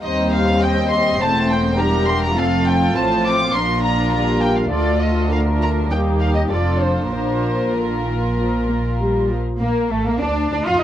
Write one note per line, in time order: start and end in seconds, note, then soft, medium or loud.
0.02 1.16 D#2 medium
0.02 1.16 D#2 soft
0.02 1.15 G3 soft
0.02 1.15 C4 soft
0.02 0.57 D#4 soft
0.02 0.57 C5 soft
0.02 0.31 D#5 medium
0.34 0.62 F5 medium
0.61 1.78 C4 soft
0.61 1.19 D#5 soft
0.61 0.91 G5 medium
0.91 1.19 C6 medium
1.19 2.34 E1 soft
1.19 2.34 E2 soft
1.19 1.78 A3 soft
1.19 1.77 C4 soft
1.19 1.77 C5 soft
1.19 1.50 A5 medium
1.51 1.79 G5 medium
1.77 2.37 G3 soft
1.77 2.37 D4 soft
1.77 2.36 G4 soft
1.77 2.36 A#4 soft
1.77 2.08 A#5 medium
2.08 2.22 C6 medium
2.24 2.37 A#5 medium
2.35 2.95 F1 soft
2.35 2.95 F2 soft
2.35 2.94 A3 soft
2.35 2.94 C4 soft
2.35 3.51 F4 soft
2.35 2.93 A4 soft
2.35 2.66 F5 medium
2.67 2.96 G5 medium
2.95 3.53 A1 soft
2.95 3.53 A2 soft
2.95 3.52 F3 soft
2.95 3.53 C4 soft
2.95 3.54 C5 soft
2.95 3.25 A5 medium
3.26 3.55 D6 medium
3.53 4.69 A#1 soft
3.53 4.69 A#2 soft
3.53 4.11 F3 soft
3.53 4.72 D4 soft
3.53 4.69 F4 soft
3.53 4.71 A#4 soft
3.53 3.83 C6 medium
3.84 4.12 A#5 medium
4.13 4.72 G3 soft
4.13 4.42 A#5 medium
4.42 4.57 G5 medium
4.57 4.72 F5 soft
4.71 5.90 D2 soft
4.71 5.91 D2 soft
4.71 5.88 A3 soft
4.71 5.29 F4 soft
4.71 5.29 A4 soft
4.71 5.01 D5 soft
5.01 5.31 D#5 soft
5.30 5.89 D4 soft
5.30 5.89 F4 soft
5.30 5.90 A#4 soft
5.30 5.40 F5 soft
5.63 5.71 A#5 soft
5.90 6.50 D#2 soft
5.90 6.51 D#2 soft
5.90 6.49 G3 soft
5.90 6.51 A#3 soft
5.90 6.49 D#4 soft
5.90 6.51 G4 soft
5.90 5.99 G5 soft
6.20 6.35 F5 soft
6.35 6.41 D#5 soft
6.50 7.12 F1 soft
6.50 7.11 F2 soft
6.50 7.12 F3 soft
6.50 7.11 D4 soft
6.50 7.11 F4 soft
6.50 7.12 A4 soft
6.50 6.80 D5 soft
6.81 7.12 C5 soft
7.12 9.37 A#1 soft
7.12 9.37 A#2 soft
7.12 7.67 F3 soft
7.12 7.67 D4 soft
7.12 9.36 F4 soft
7.12 9.36 A#4 soft
7.12 7.74 C5 soft
7.74 8.03 D3 soft
7.74 9.00 A#4 soft
8.06 8.14 D#3 soft
8.38 8.68 F3 soft
8.69 8.77 A#3 soft
9.00 9.30 G3 soft
9.31 9.61 F3 soft
9.60 9.69 A#1 soft
9.60 9.89 A#3 medium
9.60 9.89 A#3 soft
9.60 9.89 A#4 soft
9.91 10.06 A1 soft
9.91 10.06 A3 soft
9.91 9.97 A3 soft
9.91 10.06 A3 soft
9.91 10.06 A4 soft
10.05 10.21 A#1 soft
10.05 10.13 A#3 soft
10.05 10.22 A#3 soft
10.05 10.23 A#4 soft
10.20 10.50 D2 soft
10.20 10.50 D4 soft
10.20 10.49 D4 medium
10.20 10.30 D4 soft
10.20 10.52 D5 soft
10.51 10.66 D2 soft
10.51 10.65 D4 medium
10.51 10.57 D4 soft
10.51 10.58 D4 soft
10.51 10.59 D5 soft
10.66 10.72 F2 soft
10.66 10.81 F4 medium
10.66 10.72 F4 soft
10.66 10.81 F4 soft
10.66 10.82 F5 soft
10.80 10.84 D#4 soft